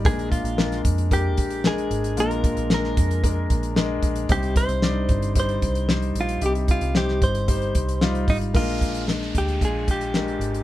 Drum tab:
HH |xxxx-xxxx-xx-xxx|xxxx--xxx-xx--xx|xxxx--xxxxxx-xxx|xxxx--xxxxxx-xox|
SD |----oo------o---|----oo------o---|----o-------o---|----oo------o---|
BD |o-o---o-o-o-----|--o---o-o-o---o-|o-o---o-o-o-----|--o---o-o-o---o-|

HH |x-xx--xxx-xx-xxx|
SD |----oo------o---|
BD |o-o---o-o-o-----|